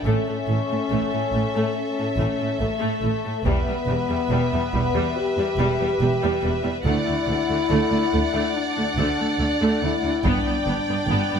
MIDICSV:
0, 0, Header, 1, 8, 480
1, 0, Start_track
1, 0, Tempo, 849858
1, 28, Time_signature, 4, 2, 24, 8
1, 6436, End_track
2, 0, Start_track
2, 0, Title_t, "Violin section"
2, 0, Program_c, 0, 48
2, 34, Note_on_c, 0, 76, 43
2, 1927, Note_off_c, 0, 76, 0
2, 1948, Note_on_c, 0, 76, 44
2, 3853, Note_off_c, 0, 76, 0
2, 3876, Note_on_c, 0, 78, 51
2, 5770, Note_off_c, 0, 78, 0
2, 5789, Note_on_c, 0, 79, 50
2, 6436, Note_off_c, 0, 79, 0
2, 6436, End_track
3, 0, Start_track
3, 0, Title_t, "Violin section"
3, 0, Program_c, 1, 48
3, 29, Note_on_c, 1, 69, 42
3, 1925, Note_off_c, 1, 69, 0
3, 1947, Note_on_c, 1, 71, 47
3, 3852, Note_off_c, 1, 71, 0
3, 3877, Note_on_c, 1, 74, 55
3, 5771, Note_off_c, 1, 74, 0
3, 5786, Note_on_c, 1, 74, 56
3, 6436, Note_off_c, 1, 74, 0
3, 6436, End_track
4, 0, Start_track
4, 0, Title_t, "French horn section"
4, 0, Program_c, 2, 60
4, 31, Note_on_c, 2, 61, 71
4, 986, Note_off_c, 2, 61, 0
4, 993, Note_on_c, 2, 61, 61
4, 1460, Note_off_c, 2, 61, 0
4, 1472, Note_on_c, 2, 57, 63
4, 1949, Note_off_c, 2, 57, 0
4, 1959, Note_on_c, 2, 59, 80
4, 2903, Note_off_c, 2, 59, 0
4, 2922, Note_on_c, 2, 67, 74
4, 3772, Note_off_c, 2, 67, 0
4, 3868, Note_on_c, 2, 64, 83
4, 4810, Note_off_c, 2, 64, 0
4, 4829, Note_on_c, 2, 62, 63
4, 5551, Note_off_c, 2, 62, 0
4, 5554, Note_on_c, 2, 64, 67
4, 5793, Note_off_c, 2, 64, 0
4, 5798, Note_on_c, 2, 62, 75
4, 6436, Note_off_c, 2, 62, 0
4, 6436, End_track
5, 0, Start_track
5, 0, Title_t, "Viola section"
5, 0, Program_c, 3, 48
5, 28, Note_on_c, 3, 57, 54
5, 141, Note_off_c, 3, 57, 0
5, 155, Note_on_c, 3, 57, 32
5, 200, Note_off_c, 3, 57, 0
5, 271, Note_on_c, 3, 57, 30
5, 316, Note_off_c, 3, 57, 0
5, 397, Note_on_c, 3, 57, 32
5, 442, Note_off_c, 3, 57, 0
5, 504, Note_on_c, 3, 57, 41
5, 618, Note_off_c, 3, 57, 0
5, 632, Note_on_c, 3, 57, 42
5, 677, Note_off_c, 3, 57, 0
5, 752, Note_on_c, 3, 57, 40
5, 797, Note_off_c, 3, 57, 0
5, 875, Note_on_c, 3, 57, 52
5, 984, Note_off_c, 3, 57, 0
5, 1114, Note_on_c, 3, 57, 40
5, 1159, Note_off_c, 3, 57, 0
5, 1231, Note_on_c, 3, 57, 39
5, 1341, Note_off_c, 3, 57, 0
5, 1352, Note_on_c, 3, 57, 39
5, 1397, Note_off_c, 3, 57, 0
5, 1467, Note_on_c, 3, 57, 44
5, 1512, Note_off_c, 3, 57, 0
5, 1582, Note_on_c, 3, 57, 58
5, 1696, Note_off_c, 3, 57, 0
5, 1707, Note_on_c, 3, 57, 48
5, 1752, Note_off_c, 3, 57, 0
5, 1829, Note_on_c, 3, 57, 37
5, 1874, Note_off_c, 3, 57, 0
5, 1955, Note_on_c, 3, 55, 51
5, 2062, Note_off_c, 3, 55, 0
5, 2074, Note_on_c, 3, 55, 42
5, 2119, Note_off_c, 3, 55, 0
5, 2192, Note_on_c, 3, 55, 38
5, 2237, Note_off_c, 3, 55, 0
5, 2313, Note_on_c, 3, 55, 45
5, 2358, Note_off_c, 3, 55, 0
5, 2432, Note_on_c, 3, 55, 51
5, 2543, Note_off_c, 3, 55, 0
5, 2557, Note_on_c, 3, 55, 42
5, 2602, Note_off_c, 3, 55, 0
5, 2677, Note_on_c, 3, 55, 48
5, 2722, Note_off_c, 3, 55, 0
5, 2795, Note_on_c, 3, 55, 51
5, 2908, Note_off_c, 3, 55, 0
5, 3043, Note_on_c, 3, 55, 46
5, 3088, Note_off_c, 3, 55, 0
5, 3159, Note_on_c, 3, 55, 54
5, 3269, Note_off_c, 3, 55, 0
5, 3276, Note_on_c, 3, 55, 47
5, 3322, Note_off_c, 3, 55, 0
5, 3393, Note_on_c, 3, 55, 46
5, 3438, Note_off_c, 3, 55, 0
5, 3513, Note_on_c, 3, 55, 57
5, 3619, Note_off_c, 3, 55, 0
5, 3626, Note_on_c, 3, 55, 44
5, 3671, Note_off_c, 3, 55, 0
5, 3745, Note_on_c, 3, 55, 46
5, 3791, Note_off_c, 3, 55, 0
5, 3867, Note_on_c, 3, 57, 55
5, 3977, Note_off_c, 3, 57, 0
5, 3983, Note_on_c, 3, 57, 42
5, 4029, Note_off_c, 3, 57, 0
5, 4103, Note_on_c, 3, 57, 40
5, 4149, Note_off_c, 3, 57, 0
5, 4229, Note_on_c, 3, 57, 37
5, 4274, Note_off_c, 3, 57, 0
5, 4346, Note_on_c, 3, 57, 64
5, 4460, Note_off_c, 3, 57, 0
5, 4474, Note_on_c, 3, 57, 49
5, 4519, Note_off_c, 3, 57, 0
5, 4588, Note_on_c, 3, 57, 50
5, 4633, Note_off_c, 3, 57, 0
5, 4706, Note_on_c, 3, 57, 58
5, 4821, Note_off_c, 3, 57, 0
5, 4949, Note_on_c, 3, 57, 47
5, 4994, Note_off_c, 3, 57, 0
5, 5069, Note_on_c, 3, 57, 54
5, 5178, Note_off_c, 3, 57, 0
5, 5185, Note_on_c, 3, 57, 47
5, 5230, Note_off_c, 3, 57, 0
5, 5301, Note_on_c, 3, 57, 46
5, 5346, Note_off_c, 3, 57, 0
5, 5429, Note_on_c, 3, 57, 58
5, 5542, Note_off_c, 3, 57, 0
5, 5552, Note_on_c, 3, 57, 49
5, 5597, Note_off_c, 3, 57, 0
5, 5673, Note_on_c, 3, 57, 35
5, 5718, Note_off_c, 3, 57, 0
5, 5790, Note_on_c, 3, 59, 64
5, 5902, Note_off_c, 3, 59, 0
5, 5911, Note_on_c, 3, 59, 38
5, 5956, Note_off_c, 3, 59, 0
5, 6028, Note_on_c, 3, 59, 44
5, 6073, Note_off_c, 3, 59, 0
5, 6153, Note_on_c, 3, 59, 40
5, 6198, Note_off_c, 3, 59, 0
5, 6265, Note_on_c, 3, 59, 56
5, 6378, Note_off_c, 3, 59, 0
5, 6384, Note_on_c, 3, 59, 41
5, 6430, Note_off_c, 3, 59, 0
5, 6436, End_track
6, 0, Start_track
6, 0, Title_t, "Cello section"
6, 0, Program_c, 4, 48
6, 36, Note_on_c, 4, 45, 59
6, 82, Note_off_c, 4, 45, 0
6, 155, Note_on_c, 4, 45, 32
6, 200, Note_off_c, 4, 45, 0
6, 279, Note_on_c, 4, 45, 38
6, 324, Note_off_c, 4, 45, 0
6, 401, Note_on_c, 4, 45, 35
6, 446, Note_off_c, 4, 45, 0
6, 523, Note_on_c, 4, 45, 51
6, 568, Note_off_c, 4, 45, 0
6, 641, Note_on_c, 4, 45, 40
6, 686, Note_off_c, 4, 45, 0
6, 760, Note_on_c, 4, 45, 36
6, 805, Note_off_c, 4, 45, 0
6, 882, Note_on_c, 4, 45, 49
6, 927, Note_off_c, 4, 45, 0
6, 1122, Note_on_c, 4, 45, 40
6, 1168, Note_off_c, 4, 45, 0
6, 1245, Note_on_c, 4, 45, 54
6, 1290, Note_off_c, 4, 45, 0
6, 1356, Note_on_c, 4, 45, 36
6, 1401, Note_off_c, 4, 45, 0
6, 1475, Note_on_c, 4, 45, 41
6, 1520, Note_off_c, 4, 45, 0
6, 1594, Note_on_c, 4, 45, 55
6, 1639, Note_off_c, 4, 45, 0
6, 1713, Note_on_c, 4, 45, 43
6, 1759, Note_off_c, 4, 45, 0
6, 1837, Note_on_c, 4, 45, 40
6, 1882, Note_off_c, 4, 45, 0
6, 1956, Note_on_c, 4, 40, 67
6, 2001, Note_off_c, 4, 40, 0
6, 2078, Note_on_c, 4, 40, 33
6, 2123, Note_off_c, 4, 40, 0
6, 2195, Note_on_c, 4, 40, 43
6, 2240, Note_off_c, 4, 40, 0
6, 2310, Note_on_c, 4, 40, 42
6, 2355, Note_off_c, 4, 40, 0
6, 2429, Note_on_c, 4, 40, 57
6, 2474, Note_off_c, 4, 40, 0
6, 2556, Note_on_c, 4, 40, 49
6, 2602, Note_off_c, 4, 40, 0
6, 2678, Note_on_c, 4, 40, 40
6, 2723, Note_off_c, 4, 40, 0
6, 2796, Note_on_c, 4, 40, 52
6, 2841, Note_off_c, 4, 40, 0
6, 3038, Note_on_c, 4, 40, 43
6, 3083, Note_off_c, 4, 40, 0
6, 3157, Note_on_c, 4, 40, 63
6, 3202, Note_off_c, 4, 40, 0
6, 3279, Note_on_c, 4, 40, 38
6, 3324, Note_off_c, 4, 40, 0
6, 3393, Note_on_c, 4, 40, 41
6, 3438, Note_off_c, 4, 40, 0
6, 3521, Note_on_c, 4, 40, 56
6, 3566, Note_off_c, 4, 40, 0
6, 3634, Note_on_c, 4, 40, 47
6, 3679, Note_off_c, 4, 40, 0
6, 3752, Note_on_c, 4, 40, 41
6, 3797, Note_off_c, 4, 40, 0
6, 3876, Note_on_c, 4, 38, 73
6, 3921, Note_off_c, 4, 38, 0
6, 3997, Note_on_c, 4, 38, 40
6, 4042, Note_off_c, 4, 38, 0
6, 4115, Note_on_c, 4, 38, 50
6, 4160, Note_off_c, 4, 38, 0
6, 4234, Note_on_c, 4, 38, 42
6, 4279, Note_off_c, 4, 38, 0
6, 4355, Note_on_c, 4, 38, 63
6, 4401, Note_off_c, 4, 38, 0
6, 4467, Note_on_c, 4, 38, 54
6, 4512, Note_off_c, 4, 38, 0
6, 4592, Note_on_c, 4, 38, 43
6, 4637, Note_off_c, 4, 38, 0
6, 4710, Note_on_c, 4, 38, 57
6, 4755, Note_off_c, 4, 38, 0
6, 4954, Note_on_c, 4, 38, 52
6, 4999, Note_off_c, 4, 38, 0
6, 5075, Note_on_c, 4, 38, 70
6, 5120, Note_off_c, 4, 38, 0
6, 5196, Note_on_c, 4, 38, 39
6, 5241, Note_off_c, 4, 38, 0
6, 5311, Note_on_c, 4, 38, 38
6, 5356, Note_off_c, 4, 38, 0
6, 5427, Note_on_c, 4, 38, 59
6, 5472, Note_off_c, 4, 38, 0
6, 5547, Note_on_c, 4, 38, 46
6, 5593, Note_off_c, 4, 38, 0
6, 5666, Note_on_c, 4, 38, 46
6, 5712, Note_off_c, 4, 38, 0
6, 5783, Note_on_c, 4, 43, 70
6, 5828, Note_off_c, 4, 43, 0
6, 5910, Note_on_c, 4, 43, 41
6, 5955, Note_off_c, 4, 43, 0
6, 6027, Note_on_c, 4, 43, 44
6, 6072, Note_off_c, 4, 43, 0
6, 6149, Note_on_c, 4, 43, 45
6, 6194, Note_off_c, 4, 43, 0
6, 6277, Note_on_c, 4, 43, 65
6, 6322, Note_off_c, 4, 43, 0
6, 6401, Note_on_c, 4, 43, 47
6, 6436, Note_off_c, 4, 43, 0
6, 6436, End_track
7, 0, Start_track
7, 0, Title_t, "Double bass section"
7, 0, Program_c, 5, 48
7, 26, Note_on_c, 5, 33, 47
7, 71, Note_off_c, 5, 33, 0
7, 269, Note_on_c, 5, 33, 37
7, 314, Note_off_c, 5, 33, 0
7, 512, Note_on_c, 5, 33, 50
7, 557, Note_off_c, 5, 33, 0
7, 748, Note_on_c, 5, 33, 37
7, 794, Note_off_c, 5, 33, 0
7, 1226, Note_on_c, 5, 33, 53
7, 1271, Note_off_c, 5, 33, 0
7, 1471, Note_on_c, 5, 33, 35
7, 1517, Note_off_c, 5, 33, 0
7, 1705, Note_on_c, 5, 33, 32
7, 1750, Note_off_c, 5, 33, 0
7, 1945, Note_on_c, 5, 28, 49
7, 1990, Note_off_c, 5, 28, 0
7, 2185, Note_on_c, 5, 28, 41
7, 2231, Note_off_c, 5, 28, 0
7, 2429, Note_on_c, 5, 28, 54
7, 2474, Note_off_c, 5, 28, 0
7, 2674, Note_on_c, 5, 28, 40
7, 2719, Note_off_c, 5, 28, 0
7, 3152, Note_on_c, 5, 28, 57
7, 3197, Note_off_c, 5, 28, 0
7, 3393, Note_on_c, 5, 28, 47
7, 3438, Note_off_c, 5, 28, 0
7, 3633, Note_on_c, 5, 28, 37
7, 3678, Note_off_c, 5, 28, 0
7, 3868, Note_on_c, 5, 38, 61
7, 3913, Note_off_c, 5, 38, 0
7, 4106, Note_on_c, 5, 38, 51
7, 4151, Note_off_c, 5, 38, 0
7, 4350, Note_on_c, 5, 38, 59
7, 4395, Note_off_c, 5, 38, 0
7, 4591, Note_on_c, 5, 38, 44
7, 4636, Note_off_c, 5, 38, 0
7, 5061, Note_on_c, 5, 38, 66
7, 5107, Note_off_c, 5, 38, 0
7, 5303, Note_on_c, 5, 38, 45
7, 5348, Note_off_c, 5, 38, 0
7, 5549, Note_on_c, 5, 38, 43
7, 5594, Note_off_c, 5, 38, 0
7, 5786, Note_on_c, 5, 31, 63
7, 5831, Note_off_c, 5, 31, 0
7, 6023, Note_on_c, 5, 31, 46
7, 6068, Note_off_c, 5, 31, 0
7, 6257, Note_on_c, 5, 31, 67
7, 6303, Note_off_c, 5, 31, 0
7, 6436, End_track
8, 0, Start_track
8, 0, Title_t, "Taiko and cinematic ensemble drums"
8, 1951, Note_on_c, 9, 41, 49
8, 2007, Note_off_c, 9, 41, 0
8, 2676, Note_on_c, 9, 41, 32
8, 2732, Note_off_c, 9, 41, 0
8, 5789, Note_on_c, 9, 41, 73
8, 5846, Note_off_c, 9, 41, 0
8, 6436, End_track
0, 0, End_of_file